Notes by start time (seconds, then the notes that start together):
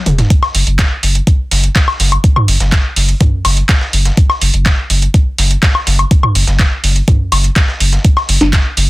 0.06 E1, closed hi-hat, mid tom
0.18 snare, closed hi-hat, mid tom
0.30 kick, closed hi-hat
0.43 snare, high woodblock
0.55 F#1, closed hi-hat, open hi-hat
0.67 F#1, closed hi-hat
0.79 kick, snare, clap, closed hi-hat
1.03 F#1, closed hi-hat, open hi-hat
1.15 closed hi-hat
1.27 kick, closed hi-hat
1.51 F#1, snare, closed hi-hat, open hi-hat
1.64 closed hi-hat
1.76 kick, snare, clap, closed hi-hat
1.88 snare, high woodblock
2.00 F#1, snare, closed hi-hat, open hi-hat
2.12 closed hi-hat, high woodblock
2.24 kick, closed hi-hat
2.36 mid tom, high woodblock
2.48 F#1, closed hi-hat, open hi-hat
2.60 F#1, snare, closed hi-hat
2.72 kick, snare, clap, closed hi-hat
2.96 F#1, open hi-hat
3.09 closed hi-hat
3.21 kick, closed hi-hat, mid tom
3.45 F#1, snare, closed hi-hat, open hi-hat, high woodblock
3.57 closed hi-hat
3.69 kick, snare, clap, closed hi-hat
3.81 snare
3.93 F#1, closed hi-hat, open hi-hat
4.05 snare, closed hi-hat
4.17 kick, closed hi-hat
4.30 snare, high woodblock
4.42 F#1, closed hi-hat, open hi-hat
4.54 F#1, closed hi-hat
4.66 kick, snare, clap, closed hi-hat
4.90 F#1, closed hi-hat, open hi-hat
5.02 closed hi-hat
5.14 kick, closed hi-hat
5.38 F#1, snare, closed hi-hat, open hi-hat
5.51 closed hi-hat
5.63 kick, snare, clap, closed hi-hat
5.75 snare, high woodblock
5.87 F#1, snare, closed hi-hat, open hi-hat
5.99 closed hi-hat, high woodblock
6.11 kick, closed hi-hat
6.23 mid tom, high woodblock
6.35 F#1, closed hi-hat, open hi-hat
6.47 F#1, snare, closed hi-hat
6.59 kick, snare, clap, closed hi-hat
6.84 F#1, open hi-hat
6.96 closed hi-hat
7.08 kick, closed hi-hat, mid tom
7.32 F#1, snare, closed hi-hat, open hi-hat, high woodblock
7.44 closed hi-hat
7.56 kick, snare, clap, closed hi-hat
7.68 snare
7.80 F#1, closed hi-hat, open hi-hat
7.93 snare, closed hi-hat
8.04 kick, closed hi-hat
8.17 snare, high woodblock
8.29 F#1, closed hi-hat, open hi-hat
8.41 F#1, snare, closed hi-hat, high conga
8.53 kick, snare, clap, closed hi-hat
8.77 F#1, closed hi-hat, open hi-hat